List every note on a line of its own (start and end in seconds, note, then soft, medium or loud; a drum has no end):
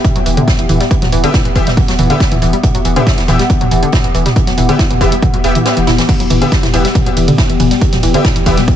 0.00 8.76 B3 medium
0.00 8.76 G4 medium
0.00 6.05 E5 medium
0.00 0.11 G5 medium
0.04 0.08 E3 medium
0.04 kick loud
0.04 closed hi-hat medium
0.04 mid tom medium
0.09 7.02 F#5 medium
0.16 0.25 E1 medium
0.16 0.22 F#3 medium
0.16 closed hi-hat medium
0.26 0.37 E1 loud
0.26 0.36 E3 loud
0.26 closed hi-hat medium
0.26 open hi-hat loud
0.37 0.43 D3 loud
0.37 closed hi-hat medium
0.37 mid tom medium
0.48 0.51 E4 medium
0.48 kick loud
0.48 snare loud
0.48 closed hi-hat medium
0.59 0.69 E1 medium
0.59 0.65 E3 medium
0.59 closed hi-hat medium
0.69 0.80 E1 loud
0.69 0.79 E3 loud
0.69 closed hi-hat medium
0.69 mid tom medium
0.69 open hi-hat loud
0.80 0.84 G3 medium
0.80 snare soft
0.80 closed hi-hat medium
0.91 0.95 E3 medium
0.91 kick loud
0.91 closed hi-hat loud
0.91 closed hi-hat medium
1.02 1.12 E1 medium
1.02 1.08 F#3 medium
1.02 snare soft
1.02 closed hi-hat medium
1.02 mid tom medium
1.12 1.23 E1 loud
1.12 1.22 E3 loud
1.12 closed hi-hat medium
1.12 open hi-hat loud
1.24 1.30 D3 loud
1.24 1.35 B3 medium
1.24 1.35 G4 medium
1.24 1.35 E5 loud
1.24 closed hi-hat medium
1.33 1.38 E4 medium
1.33 kick loud
1.33 snare loud
1.33 closed hi-hat medium
1.33 mid tom medium
1.45 1.55 E1 medium
1.45 1.51 E3 medium
1.45 closed hi-hat medium
1.55 1.67 E1 loud
1.55 1.65 E3 loud
1.55 1.68 B3 medium
1.55 1.68 G4 medium
1.55 1.68 E5 loud
1.55 kick medium
1.55 closed hi-hat medium
1.55 open hi-hat medium
1.67 1.70 G3 medium
1.67 snare medium
1.67 closed hi-hat medium
1.67 mid tom medium
1.77 1.81 E3 medium
1.77 kick loud
1.77 closed hi-hat medium
1.77 open hi-hat medium
1.88 1.98 E1 medium
1.88 1.94 F#3 medium
1.88 snare medium
1.88 closed hi-hat medium
1.99 2.10 E1 medium
1.99 2.08 E3 loud
1.99 closed hi-hat medium
1.99 mid tom medium
1.99 open hi-hat loud
2.10 2.16 D3 loud
2.10 2.22 B3 medium
2.10 2.22 G4 medium
2.10 2.22 E5 medium
2.10 closed hi-hat medium
2.20 2.24 E4 medium
2.20 kick loud
2.20 snare loud
2.20 closed hi-hat medium
2.32 2.41 E1 medium
2.32 2.37 E3 medium
2.32 closed hi-hat medium
2.32 mid tom medium
2.42 2.53 E1 loud
2.42 2.52 E3 loud
2.42 closed hi-hat medium
2.42 open hi-hat medium
2.53 2.57 G3 medium
2.53 closed hi-hat medium
2.63 2.67 E3 medium
2.63 kick loud
2.63 closed hi-hat medium
2.63 closed hi-hat loud
2.63 mid tom medium
2.74 2.85 E1 medium
2.74 2.81 F#3 medium
2.74 closed hi-hat soft
2.74 closed hi-hat medium
2.84 2.96 E1 loud
2.84 2.95 E3 loud
2.84 closed hi-hat medium
2.84 open hi-hat loud
2.96 3.02 D3 loud
2.96 3.08 B3 medium
2.96 3.08 G4 medium
2.96 3.08 E5 medium
2.96 closed hi-hat medium
2.96 mid tom medium
3.07 3.11 E4 medium
3.07 kick loud
3.07 snare loud
3.07 closed hi-hat medium
3.07 closed hi-hat loud
3.18 3.28 E1 medium
3.18 3.24 E3 medium
3.18 snare medium
3.18 closed hi-hat medium
3.28 3.39 E1 loud
3.28 3.38 E3 loud
3.28 3.41 B3 medium
3.28 3.41 G4 medium
3.28 3.41 E5 medium
3.28 closed hi-hat medium
3.28 mid tom medium
3.28 open hi-hat medium
3.39 3.43 G3 medium
3.39 snare medium
3.39 closed hi-hat medium
3.50 3.54 E3 medium
3.50 kick loud
3.50 closed hi-hat medium
3.61 3.71 E1 medium
3.61 3.67 F#3 medium
3.61 closed hi-hat medium
3.61 mid tom medium
3.71 3.82 E1 medium
3.71 3.81 E3 loud
3.71 closed hi-hat medium
3.71 open hi-hat loud
3.83 3.89 D3 loud
3.83 closed hi-hat medium
3.92 3.97 E4 medium
3.92 kick loud
3.92 snare loud
3.92 closed hi-hat medium
3.92 mid tom medium
4.04 4.14 E1 medium
4.04 4.10 E3 medium
4.04 closed hi-hat medium
4.14 4.26 E1 loud
4.14 4.24 E3 loud
4.14 closed hi-hat medium
4.14 open hi-hat medium
4.26 4.29 G3 medium
4.26 snare soft
4.26 closed hi-hat medium
4.26 mid tom medium
4.36 4.40 E3 medium
4.36 kick loud
4.36 closed hi-hat medium
4.47 4.57 E1 medium
4.47 4.53 F#3 medium
4.47 snare soft
4.47 closed hi-hat medium
4.58 4.69 E1 loud
4.58 4.67 E3 loud
4.58 closed hi-hat medium
4.58 mid tom medium
4.58 open hi-hat loud
4.69 4.75 D3 loud
4.69 4.81 B3 medium
4.69 4.81 G4 medium
4.69 4.81 E5 loud
4.69 closed hi-hat medium
4.79 4.83 E4 medium
4.79 kick loud
4.79 snare loud
4.79 closed hi-hat medium
4.90 5.00 E1 medium
4.90 4.96 E3 medium
4.90 closed hi-hat medium
4.90 mid tom medium
5.01 5.12 E1 loud
5.01 5.10 E3 loud
5.01 5.13 B3 medium
5.01 5.13 G4 medium
5.01 5.13 E5 loud
5.01 kick medium
5.01 closed hi-hat medium
5.01 open hi-hat medium
5.12 5.16 G3 medium
5.12 closed hi-hat soft
5.12 closed hi-hat medium
5.22 5.26 E3 medium
5.22 kick loud
5.22 closed hi-hat medium
5.22 mid tom medium
5.34 5.43 E1 medium
5.34 5.40 F#3 medium
5.34 closed hi-hat medium
5.44 5.55 E1 loud
5.44 5.50 B3 medium
5.44 5.52 B3 loud
5.44 5.52 G4 medium
5.44 5.52 E5 loud
5.44 open hi-hat loud
5.55 5.64 E3 medium
5.55 closed hi-hat medium
5.55 mid tom medium
5.65 5.72 G3 medium
5.65 5.73 B3 medium
5.65 5.73 G4 medium
5.65 5.73 E5 medium
5.65 snare loud
5.65 closed hi-hat medium
5.77 5.87 E1 medium
5.77 5.86 E3 medium
5.77 closed hi-hat medium
5.87 5.98 E1 loud
5.87 5.94 E4 loud
5.87 snare loud
5.87 closed hi-hat medium
5.87 mid tom medium
5.87 open hi-hat medium
5.92 8.76 D5 medium
5.98 6.04 E3 medium
5.98 snare loud
5.98 closed hi-hat medium
6.09 6.13 E3 medium
6.09 kick loud
6.09 closed hi-hat medium
6.09 crash medium
6.09 ride medium
6.20 6.30 E1 medium
6.20 6.26 F#3 medium
6.20 closed hi-hat medium
6.20 closed hi-hat soft
6.30 6.41 E1 loud
6.30 6.40 E3 loud
6.30 closed hi-hat medium
6.30 mid tom medium
6.30 open hi-hat loud
6.30 ride medium
6.42 6.48 D3 loud
6.42 6.53 B3 medium
6.42 6.53 G4 medium
6.42 6.53 E5 medium
6.42 closed hi-hat medium
6.52 6.56 E4 medium
6.52 kick loud
6.52 snare loud
6.52 closed hi-hat medium
6.52 ride medium
6.63 6.73 E1 medium
6.63 6.69 E3 medium
6.63 snare medium
6.63 closed hi-hat medium
6.63 mid tom medium
6.74 6.85 E1 loud
6.74 6.83 E3 loud
6.74 6.86 B3 medium
6.74 6.86 G4 medium
6.74 6.86 E5 medium
6.74 closed hi-hat medium
6.74 open hi-hat medium
6.74 ride medium
6.85 6.88 G3 medium
6.85 snare medium
6.85 closed hi-hat medium
6.95 6.99 E3 medium
6.95 kick loud
6.95 closed hi-hat medium
6.95 mid tom medium
6.95 ride medium
7.00 8.76 G5 medium
7.06 7.16 E1 medium
7.06 7.12 F#3 medium
7.06 closed hi-hat medium
7.17 7.28 E1 medium
7.17 7.26 E3 loud
7.17 closed hi-hat medium
7.17 open hi-hat loud
7.17 ride medium
7.28 7.34 D3 loud
7.28 closed hi-hat medium
7.28 mid tom medium
7.38 7.42 E4 medium
7.38 kick loud
7.38 snare loud
7.38 closed hi-hat medium
7.38 ride medium
7.49 7.59 E1 medium
7.49 7.55 E3 medium
7.49 closed hi-hat medium
7.60 7.71 E1 loud
7.60 7.69 E3 loud
7.60 closed hi-hat medium
7.60 mid tom medium
7.60 open hi-hat medium
7.60 ride medium
7.71 7.75 G3 medium
7.71 snare soft
7.71 closed hi-hat medium
7.81 7.85 E3 medium
7.81 kick loud
7.81 closed hi-hat medium
7.81 closed hi-hat loud
7.81 ride medium
7.92 8.02 E1 medium
7.92 7.99 F#3 medium
7.92 snare soft
7.92 closed hi-hat medium
7.92 mid tom medium
8.03 8.14 E1 loud
8.03 8.13 E3 loud
8.03 closed hi-hat medium
8.03 open hi-hat loud
8.03 ride medium
8.14 8.20 D3 loud
8.14 8.26 B3 medium
8.14 8.26 G4 medium
8.14 8.26 E5 loud
8.14 closed hi-hat medium
8.25 8.29 E4 medium
8.25 kick loud
8.25 snare loud
8.25 closed hi-hat medium
8.25 mid tom medium
8.25 ride medium
8.36 8.46 E1 medium
8.36 8.42 E3 medium
8.36 closed hi-hat medium
8.46 8.57 E1 loud
8.46 8.56 E3 loud
8.46 8.59 B3 medium
8.46 8.59 G4 medium
8.46 8.59 E5 loud
8.46 kick medium
8.46 closed hi-hat medium
8.46 open hi-hat loud
8.46 ride medium
8.57 8.61 G3 medium
8.57 snare soft
8.57 closed hi-hat medium
8.57 mid tom medium
8.68 8.72 E3 medium
8.68 kick loud
8.68 closed hi-hat medium
8.68 open hi-hat medium
8.68 ride medium